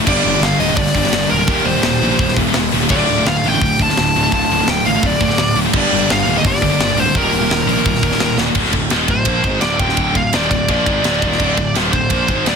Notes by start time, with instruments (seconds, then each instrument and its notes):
0.06 picked electric bass G1, distorted electric guitar G2 D3 G3, overdriven electric guitar A#3 D4 G4, lead electric guitar D5, kick, crash
0.25 picked electric bass G1, distorted electric guitar G2 D3, open hi-hat
0.36 distorted electric guitar G2 D3
0.41 picked electric bass G1, distorted electric guitar G2 D3, lead electric guitar F5, snare, open hi-hat
0.59 picked electric bass D1, distorted electric guitar G2 D3, lead electric guitar D#5, open hi-hat
0.69 distorted electric guitar G2 D3
0.76 picked electric bass G1, distorted electric guitar G2 D3, lead electric guitar D5, kick, open hi-hat
0.87 snare
0.94 picked electric bass G1, distorted electric guitar G2 D3, kick, open hi-hat
1.04 distorted electric guitar G2 D3, snare
1.12 picked electric bass G1, distorted electric guitar G2 D3, snare, open hi-hat
1.29 picked electric bass D1, distorted electric guitar G2 D3, lead electric guitar A#4, open hi-hat
1.39 distorted electric guitar G2 D3
1.47 picked electric bass D#1, distorted electric guitar D#2 A#2 D#3, overdriven electric guitar G3 G4, kick, open hi-hat
1.65 picked electric bass D#1, distorted electric guitar D#2 A#2, lead electric guitar C5, open hi-hat
1.76 distorted electric guitar D#2 A#2
1.82 picked electric bass D#1, distorted electric guitar D#2 A#2, snare, open hi-hat
2.02 picked electric bass A#1, distorted electric guitar D#2 A#2, open hi-hat
2.11 distorted electric guitar D#2 A#2
2.19 picked electric bass D#1, distorted electric guitar D#2 A#2, kick, open hi-hat
2.28 snare
2.36 picked electric bass D#1, distorted electric guitar D#2 A#2, kick, open hi-hat
2.48 distorted electric guitar D#2 A#2
2.53 picked electric bass D#1, distorted electric guitar D#2 A#2, snare, open hi-hat
2.71 picked electric bass D#1, distorted electric guitar D#2 A#2, open hi-hat
2.83 distorted electric guitar D#2 A#2
2.89 picked electric bass D1, distorted electric guitar D2 A2 D3, overdriven electric guitar A3 F4, lead electric guitar D5, kick, crash
3.08 picked electric bass D1, distorted electric guitar D2 A2, open hi-hat
3.18 distorted electric guitar D2 A2
3.26 picked electric bass D1, distorted electric guitar D2 A2, lead electric guitar F5, snare, open hi-hat
3.44 picked electric bass A1, distorted electric guitar D2 A2, open hi-hat
3.49 lead electric guitar G5
3.54 distorted electric guitar D2 A2
3.61 picked electric bass D1, distorted electric guitar D2 A2, kick, open hi-hat
3.79 picked electric bass D1, distorted electric guitar D2 A2, lead electric guitar A5, kick, open hi-hat
3.89 distorted electric guitar D2 A2, snare
3.97 picked electric bass D1, distorted electric guitar D2 A2, snare, open hi-hat
4.14 picked electric bass D1, distorted electric guitar D2 A2, open hi-hat
4.25 distorted electric guitar D2 A2
4.32 picked electric bass D1, distorted electric guitar D2 A2, overdriven electric guitar D3 A3 F4, lead electric guitar A5, kick, open hi-hat
4.50 picked electric bass D1, distorted electric guitar D2 A2, open hi-hat
4.60 distorted electric guitar D2 A2
4.67 picked electric bass D1, distorted electric guitar D2 A2, lead electric guitar G5, snare, open hi-hat
4.85 picked electric bass A1, distorted electric guitar D2 A2, lead electric guitar F5, open hi-hat
4.95 distorted electric guitar D2 A2
5.03 picked electric bass D1, distorted electric guitar D2 A2, lead electric guitar D5, kick, open hi-hat
5.20 picked electric bass D1, distorted electric guitar D2 A2, kick, open hi-hat
5.29 distorted electric guitar D2 A2, snare
5.37 picked electric bass D1, distorted electric guitar D2 A2, snare, open hi-hat
5.55 picked electric bass D1, distorted electric guitar D2 A2, open hi-hat
5.65 distorted electric guitar D2 A2
5.73 picked electric bass G1, distorted electric guitar G2 D3 G3, overdriven electric guitar A#3 D4 G4, kick, crash
5.77 lead electric guitar D5
5.91 picked electric bass G1, distorted electric guitar G2 D3, open hi-hat
6.01 distorted electric guitar G2 D3
6.09 picked electric bass G1, distorted electric guitar G2 D3, lead electric guitar F5, snare, open hi-hat
6.26 picked electric bass D1, distorted electric guitar G2 D3, open hi-hat
6.36 distorted electric guitar G2 D3, lead electric guitar D#5
6.44 picked electric bass G1, distorted electric guitar G2 D3, lead electric guitar D5, kick, open hi-hat
6.55 snare
6.62 picked electric bass G1, distorted electric guitar G2 D3, kick, open hi-hat
6.70 distorted electric guitar G2 D3
6.79 picked electric bass G1, distorted electric guitar G2 D3, snare, open hi-hat
6.95 picked electric bass D1, distorted electric guitar G2 D3, lead electric guitar C5, open hi-hat
7.06 distorted electric guitar G2 D3
7.15 picked electric bass D#1, distorted electric guitar D#2 A#2 D#3, overdriven electric guitar G3 G4, lead electric guitar A#4, kick, open hi-hat
7.31 picked electric bass D#1, distorted electric guitar D#2 A#2, open hi-hat
7.42 distorted electric guitar D#2 A#2
7.49 picked electric bass D#1, distorted electric guitar D#2 A#2, snare, open hi-hat
7.67 picked electric bass A#1, distorted electric guitar D#2 A#2, open hi-hat
7.78 distorted electric guitar D#2 A#2
7.86 picked electric bass D#1, distorted electric guitar D#2 A#2, kick, open hi-hat
7.95 snare
8.02 picked electric bass D#1, distorted electric guitar D#2 A#2, kick, open hi-hat
8.12 distorted electric guitar D#2 A#2, snare
8.19 picked electric bass D#1, distorted electric guitar D#2 A#2, snare, open hi-hat
8.37 picked electric bass D#1, distorted electric guitar D#2 A#2, snare
8.48 distorted electric guitar D#2 A#2
8.55 picked electric bass D1, distorted electric guitar D2 A2 D3, kick, crash
8.65 snare
8.73 picked electric bass D1, distorted electric guitar D2 A2, kick, ride
8.90 picked electric bass D#1, distorted electric guitar D#2 A#2 D#3, snare, ride
9.08 picked electric bass D1, distorted electric guitar D2 A2, lead electric guitar C5, kick, ride
9.25 picked electric bass A#1, distorted electric guitar A#2 F3 A#3, kick, ride
9.44 picked electric bass G#1, distorted electric guitar G#2 D#3 G#3, kick, ride
9.60 picked electric bass D1, distorted electric guitar D2 A2 D3, lead electric guitar D5, snare, ride
9.78 picked electric bass D#1, distorted electric guitar D#2 A#2 D#3, lead electric guitar G5, kick, ride
9.89 snare
9.97 picked electric bass D1, distorted electric guitar D2 A2 D3, kick, ride
10.14 picked electric bass D1, distorted electric guitar D2 A2, lead electric guitar F5, kick, ride
10.33 picked electric bass D#1, distorted electric guitar D#2 A#2 D#3, lead electric guitar D5, snare, ride
10.50 picked electric bass D1, distorted electric guitar D2 A2, lead electric guitar D5, kick, ride
10.68 picked electric bass A#1, distorted electric guitar A#2 F3 A#3, lead electric guitar D5, kick, ride
10.85 picked electric bass G#1, distorted electric guitar G#2 D#3 G#3, kick, ride
11.03 picked electric bass D1, distorted electric guitar D2 A2 D3, snare, ride
11.21 picked electric bass D#1, distorted electric guitar D#2 A#2 D#3, kick, ride
11.32 snare
11.39 picked electric bass D1, distorted electric guitar D2 A2 D3, kick, crash
11.57 picked electric bass D1, distorted electric guitar D2 A2, kick, ride
11.75 picked electric bass D#1, distorted electric guitar D#2 A#2 D#3, snare, ride
11.92 picked electric bass D1, distorted electric guitar D2 A2, lead electric guitar C5, kick, ride
12.10 picked electric bass A#1, distorted electric guitar A#2 F3 A#3, kick, ride
12.28 picked electric bass G#1, distorted electric guitar G#2 D#3 G#3, kick, ride
12.46 picked electric bass D1, distorted electric guitar D2 A2 D3, lead electric guitar D5, snare, ride